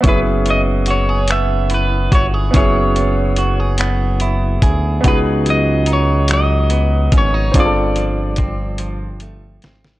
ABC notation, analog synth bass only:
X:1
M:6/8
L:1/8
Q:3/8=48
K:C#dor
V:1 name="Analog synth bass" clef=bass
F,,,4- F,,, =G,,, | F,,,4- F,,, =D,, | C,,4- C,, G,,, | =G,,,4- G,,, ^G,,, |]